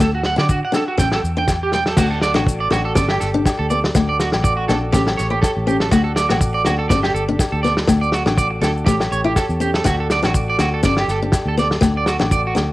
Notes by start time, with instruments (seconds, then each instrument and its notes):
0.00 fingered electric bass D2, steel-string acoustic guitar A3, clean electric guitar A4, kick, low agogo, maracas
0.15 clean electric guitar F#4
0.23 clean electric guitar F#5, snare
0.36 fingered electric bass D3, steel-string acoustic guitar D4, clean electric guitar D5, snare, low agogo
0.49 clean electric guitar F#4, kick, maracas
0.65 clean electric guitar F#5
0.72 steel-string acoustic guitar D4, clean electric guitar A4, snare, low agogo, maracas
0.88 clean electric guitar F#4
0.98 fingered electric bass A1, steel-string acoustic guitar C#4, clean electric guitar G5, kick, snare, maracas
1.12 clean electric guitar A4, snare, low agogo
1.23 fingered electric bass E2, maracas
1.37 steel-string acoustic guitar D4, clean electric guitar G5
1.48 kick, snare, low agogo, maracas
1.63 clean electric guitar G4
1.72 steel-string acoustic guitar G3, clean electric guitar G5, snare, maracas
1.86 clean electric guitar A4, snare
1.97 fingered electric bass D2, steel-string acoustic guitar A3, clean electric guitar F#4, transistor combo organ F#4 A4 D5, kick, snare, crash, low agogo, maracas
2.11 clean electric guitar A4
2.21 clean electric guitar D5, snare, maracas
2.34 fingered electric bass A1, steel-string acoustic guitar D4, clean electric guitar F#4, snare, low agogo, maracas
2.47 kick, maracas
2.60 clean electric guitar D5
2.71 fingered electric bass A1, steel-string acoustic guitar D4, clean electric guitar F#4, snare, low agogo, maracas
2.85 clean electric guitar A4
2.95 fingered electric bass G1, steel-string acoustic guitar C#4, transistor combo organ G4 D5, clean electric guitar D5, kick, snare, maracas
3.09 clean electric guitar G4, snare, low agogo
3.20 fingered electric bass G1, clean electric guitar A4, snare, maracas
3.34 steel-string acoustic guitar D4
3.46 kick, snare, low agogo, maracas
3.59 fingered electric bass D2, clean electric guitar A4
3.70 steel-string acoustic guitar B3, clean electric guitar D5, maracas
3.84 snare
3.95 fingered electric bass D2, steel-string acoustic guitar A3, transistor combo organ F#4 D5, kick, snare, low agogo, maracas
4.09 clean electric guitar D5
4.20 clean electric guitar F#4, snare, maracas
4.32 fingered electric bass A1, snare, low agogo, maracas
4.44 clean electric guitar D5, kick, maracas
4.57 clean electric guitar F#4
4.68 fingered electric bass A#1, steel-string acoustic guitar D4, clean electric guitar A4, snare, low agogo, maracas
4.92 fingered electric bass A1, steel-string acoustic guitar C#4, clean electric guitar G4, transistor combo organ G4 C#5, kick, snare, maracas
5.07 snare, low agogo
5.17 fingered electric bass A1, clean electric guitar C#5, snare, maracas
5.30 steel-string acoustic guitar E4, clean electric guitar G4
5.42 clean electric guitar A4, kick, snare, low agogo, maracas
5.57 fingered electric bass A1
5.67 steel-string acoustic guitar C#4, clean electric guitar G4, maracas
5.80 clean electric guitar A4, snare
5.91 fingered electric bass D2, steel-string acoustic guitar A3, clean electric guitar F#4, transistor combo organ F#4 A4 D5, kick, snare, low agogo, maracas
6.04 clean electric guitar A4
6.16 clean electric guitar D5, snare, maracas
6.29 fingered electric bass A1, clean electric guitar F#4, muted steel-string acoustic guitar stroke, snare, low agogo, maracas
6.41 kick, maracas
6.54 clean electric guitar D5
6.64 fingered electric bass D2, steel-string acoustic guitar D4, clean electric guitar F#4, snare, low agogo, maracas
6.79 clean electric guitar A4
6.89 fingered electric bass G1, steel-string acoustic guitar C#4, transistor combo organ G4, clean electric guitar D5, kick, snare, maracas
7.03 clean electric guitar G4, snare, low agogo
7.14 fingered electric bass G1, clean electric guitar A4, maracas
7.29 steel-string acoustic guitar D4
7.39 kick, snare, low agogo, maracas
7.52 fingered electric bass D2, clean electric guitar A4
7.63 steel-string acoustic guitar B3, clean electric guitar D5, snare, maracas
7.77 snare
7.87 fingered electric bass D2, steel-string acoustic guitar A3, transistor combo organ F#4 A4, kick, snare, low agogo, maracas
8.01 clean electric guitar D5, maracas
8.12 clean electric guitar F#4, snare, maracas
8.26 fingered electric bass A1, steel-string acoustic guitar D4, snare, low agogo, maracas
8.38 clean electric guitar D5, kick, maracas
8.51 muted clean electric guitar stroke
8.61 fingered electric bass D2, steel-string acoustic guitar D4, clean electric guitar A4, snare, low agogo, maracas
8.77 maracas
8.86 fingered electric bass A1, steel-string acoustic guitar A3, clean electric guitar G4, transistor combo organ G4 A4 C#5, kick, snare, maracas
9.00 snare, low agogo, maracas
9.11 fingered electric bass A1, clean electric guitar C#5, maracas
9.24 steel-string acoustic guitar E4, clean electric guitar G4
9.36 clean electric guitar A4, kick, snare, low agogo, maracas
9.49 fingered electric bass E2, maracas
9.60 steel-string acoustic guitar C#4, clean electric guitar G4, maracas
9.74 clean electric guitar A4, snare, maracas
9.84 fingered electric bass D2, transistor combo organ F#4 A4 D5, clean electric guitar F#4, muted steel-string acoustic guitar stroke, kick, snare, low agogo, maracas
10.00 clean electric guitar A4
10.10 clean electric guitar D5, snare, maracas
10.23 fingered electric bass A1, steel-string acoustic guitar D4, clean electric guitar F#4, snare, low agogo, maracas
10.34 kick, maracas
10.50 clean electric guitar D5
10.59 fingered electric bass D2, steel-string acoustic guitar D4, clean electric guitar F#4, snare, low agogo, maracas
10.74 clean electric guitar A4
10.83 fingered electric bass G1, steel-string acoustic guitar C#4, transistor combo organ G4 D5, clean electric guitar D5, kick, snare, maracas
10.97 clean electric guitar G4, snare, low agogo
11.08 fingered electric bass G1, clean electric guitar A4, snare, maracas
11.22 steel-string acoustic guitar D4
11.32 kick, snare, low agogo, maracas
11.45 fingered electric bass D2, clean electric guitar A4
11.57 steel-string acoustic guitar B3, clean electric guitar D5, snare, maracas
11.71 snare
11.81 fingered electric bass D2, steel-string acoustic guitar A3, transistor combo organ F#4, kick, snare, low agogo, maracas
11.97 clean electric guitar D5
12.06 clean electric guitar F#4, snare, maracas
12.19 fingered electric bass A1, steel-string acoustic guitar D4, snare, low agogo, maracas
12.31 clean electric guitar D5, kick, maracas
12.47 clean electric guitar F#4
12.55 fingered electric bass D2, steel-string acoustic guitar D4, snare, low agogo, maracas